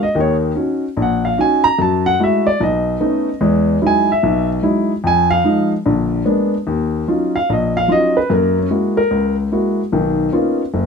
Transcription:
0.03 0.16 D#5 medium
0.15 0.50 D#2 medium
0.15 0.51 D#3 medium
0.20 0.35 C#5 medium
0.55 0.83 C#4 medium
0.55 0.83 D#4 soft
0.55 0.84 F#4 medium
0.97 1.32 A#1 medium
1.02 1.25 F#5 medium
1.25 1.38 F5 medium
1.38 1.65 C#4 medium
1.38 1.65 D#4 medium
1.38 1.66 F#4 medium
1.38 1.64 G#5 medium
1.64 1.78 A#5 loud
1.79 2.14 F#2 medium
1.79 2.14 F#3 medium
1.79 2.05 A5 medium
2.06 2.20 F#5 loud
2.20 2.47 G#3 medium
2.20 2.47 A3 soft
2.20 2.47 E4 soft
2.20 2.47 F#4 medium
2.20 2.47 E5 medium
2.47 2.60 D5 loud
2.60 2.95 B1 medium
2.60 3.39 D#5 medium
3.00 3.28 A3 medium
3.00 3.28 B3 soft
3.00 3.28 C#4 soft
3.00 3.28 D#4 medium
3.41 3.76 E2 medium
3.41 3.76 G#3 medium
3.82 4.09 F#3 medium
3.82 4.09 G#3 soft
3.82 4.10 D#4 medium
3.82 4.10 E4 medium
3.87 4.10 G#5 medium
4.12 4.48 E5 medium
4.23 4.58 B1 medium
4.62 4.90 F#3 medium
4.62 4.91 G#3 soft
4.62 4.91 D#4 soft
4.62 4.91 E4 medium
5.04 5.39 F2 medium
5.04 5.31 G#5 loud
5.31 5.68 F5 loud
5.44 5.72 F3 medium
5.44 5.72 G#3 medium
5.44 5.72 D#4 medium
5.86 6.21 A#1 medium
5.86 6.21 D3 medium
6.25 6.53 G#3 medium
6.25 6.53 A#3 soft
6.25 6.54 B3 medium
6.25 6.54 D4 medium
6.67 7.02 D#2 medium
7.08 7.35 F#3 soft
7.08 7.35 C#4 soft
7.08 7.35 D#4 soft
7.08 7.36 F4 medium
7.36 7.49 F5 medium
7.49 7.84 A#1 medium
7.49 7.76 D#5 medium
7.77 7.90 F5 loud
7.88 8.16 F#3 medium
7.88 8.17 C#4 soft
7.88 8.17 D#4 soft
7.88 8.17 F4 medium
7.88 8.16 D#5 medium
8.17 8.30 B4 medium
8.30 8.65 F#2 medium
8.30 8.65 A#3 medium
8.34 8.57 A#4 medium
8.59 8.72 C#4 medium
8.70 8.98 G#3 soft
8.70 8.98 A#3 soft
8.70 8.98 E4 soft
8.70 8.98 F#4 medium
8.97 9.35 A#4 medium
9.11 9.46 C#2 medium
9.52 9.80 G#3 medium
9.52 9.80 A#3 soft
9.52 9.80 E4 soft
9.52 9.80 F#4 medium
9.92 10.28 B1 medium
9.92 10.28 D#3 medium
10.32 10.61 A#3 medium
10.32 10.61 B3 soft
10.32 10.61 C#4 soft
10.32 10.61 D#4 soft
10.32 10.61 F4 medium
10.74 10.86 F#1 medium

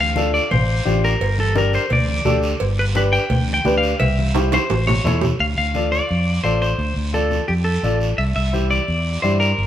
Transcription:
0.00 0.38 D2 medium
0.00 0.33 F5 loud
0.16 0.41 D4 medium
0.16 0.41 F4 medium
0.16 0.41 A4 medium
0.16 high conga medium
0.16 short guiro medium
0.34 0.50 D5 medium
0.34 short guiro medium
0.51 0.79 A1 medium
0.51 1.04 C5 medium
0.51 cowbell medium
0.51 high conga soft
0.51 low conga medium
0.51 long guiro medium
0.85 1.14 A1 medium
0.85 1.10 D4 medium
0.85 1.10 F4 medium
0.85 1.10 G4 medium
0.85 high conga medium
0.85 short guiro medium
1.04 1.37 A#4 medium
1.04 short guiro medium
1.20 1.77 G1 medium
1.20 cowbell loud
1.20 high conga soft
1.20 long guiro medium
1.38 1.56 A4 medium
1.38 high conga medium
1.55 1.80 D4 medium
1.55 1.80 G4 medium
1.55 1.80 A#4 medium
1.55 1.73 A#4 medium
1.55 high conga loud
1.55 short guiro medium
1.73 1.90 C5 medium
1.73 short guiro medium
1.90 2.19 D2 medium
1.90 2.40 D5 medium
1.90 cowbell medium
1.90 high conga soft
1.90 low conga medium
1.90 long guiro medium
2.08 high conga medium
2.25 2.53 D2 medium
2.25 2.50 D4 medium
2.25 2.50 G4 medium
2.25 2.50 A4 medium
2.25 high conga medium
2.25 low conga medium
2.25 low timbale medium
2.25 short guiro medium
2.43 short guiro medium
2.60 3.17 G1 medium
2.60 cowbell loud
2.60 high conga soft
2.60 long guiro medium
2.79 2.84 B4 medium
2.95 3.19 D4 medium
2.95 3.20 G4 medium
2.95 3.20 B4 medium
2.95 3.02 B4 loud
2.95 high conga medium
2.95 short guiro medium
3.13 3.53 G5 loud
3.13 short guiro medium
3.30 3.58 D2 medium
3.30 cowbell medium
3.30 high conga soft
3.30 low conga medium
3.30 long guiro medium
3.48 high conga medium
3.54 3.75 G5 loud
3.65 3.93 D2 medium
3.65 3.89 D4 medium
3.65 3.90 G4 medium
3.65 3.90 B4 medium
3.65 high conga medium
3.65 low timbale medium
3.65 short guiro medium
3.78 3.99 F5 medium
3.83 short guiro medium
4.00 4.56 C2 medium
4.00 4.32 E5 loud
4.00 cowbell loud
4.00 high conga soft
4.00 low conga medium
4.00 long guiro medium
4.19 high conga medium
4.35 4.59 E4 medium
4.35 4.59 G4 medium
4.35 4.60 C5 medium
4.35 high conga medium
4.35 high timbale medium
4.35 short guiro medium
4.52 4.86 C5 medium
4.52 high conga loud
4.52 high timbale medium
4.52 short guiro medium
4.70 4.98 A1 medium
4.70 cowbell medium
4.70 high conga medium
4.70 low timbale medium
4.70 long guiro medium
4.87 5.20 C#5 medium
4.87 low conga medium
4.87 low timbale medium
5.04 5.32 E2 medium
5.04 5.29 E4 medium
5.04 5.29 A4 medium
5.04 5.29 C#5 medium
5.04 low conga medium
5.04 short guiro medium
5.21 low conga medium
5.21 low timbale medium
5.21 short guiro medium
5.40 5.54 D2 medium
5.40 5.45 F5 medium
5.40 long guiro medium
5.58 5.99 D2 medium
5.58 5.90 F5 medium
5.74 5.99 F4 medium
5.74 5.99 A4 medium
5.74 5.99 D5 medium
5.74 high conga medium
5.74 short guiro medium
5.92 6.41 D5 medium
5.92 short guiro medium
6.09 6.38 F2 medium
6.09 long guiro medium
6.44 6.72 A1 medium
6.44 6.68 F4 medium
6.44 6.69 A4 medium
6.44 6.61 C5 medium
6.44 6.69 D5 medium
6.44 high conga medium
6.44 short guiro medium
6.62 6.94 C5 medium
6.62 short guiro medium
6.78 6.93 D2 loud
6.78 long guiro medium
6.96 7.38 D2 medium
7.13 7.38 F4 medium
7.13 7.38 A4 medium
7.13 7.47 A4 medium
7.13 7.39 D5 medium
7.13 high conga medium
7.13 short guiro medium
7.31 high conga medium
7.31 short guiro medium
7.48 7.77 F2 medium
7.48 7.53 G4 medium
7.48 long guiro medium
7.64 7.98 A4 medium
7.83 8.11 A1 loud
7.83 8.08 F4 medium
7.83 8.08 A4 medium
7.83 8.08 D5 medium
7.83 high conga medium
7.83 short guiro medium
8.01 short guiro medium
8.18 8.32 C2 loud
8.18 8.23 E5 medium
8.18 long guiro medium
8.36 8.78 C2 medium
8.36 8.70 E5 medium
8.53 8.78 E4 medium
8.53 8.78 G4 medium
8.53 8.78 C5 medium
8.53 high conga medium
8.53 short guiro medium
8.70 9.20 D5 medium
8.70 high conga medium
8.70 short guiro medium
8.88 9.16 E2 medium
8.88 long guiro medium
9.22 9.52 G2 loud
9.22 9.48 E4 medium
9.22 9.48 G4 medium
9.22 9.39 C5 medium
9.22 9.48 D5 medium
9.22 high conga medium
9.22 short guiro medium
9.40 9.67 A#4 medium
9.40 short guiro medium
9.58 9.67 G1 medium
9.58 long guiro medium

